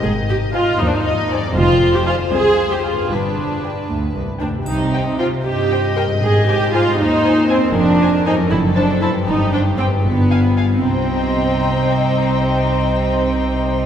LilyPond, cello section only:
\new Staff \with { instrumentName = "Cello section" } { \clef bass \time 6/8 \key c \minor \tempo 4. = 78 aes,4. ees,4. | f,4. c,4. | g,4. d,8 c,8 d,8 | c4. g,4. |
aes,4. ees,4. | f,4. fis,4. | g,4. g,4. | c2.~ |
c2. | }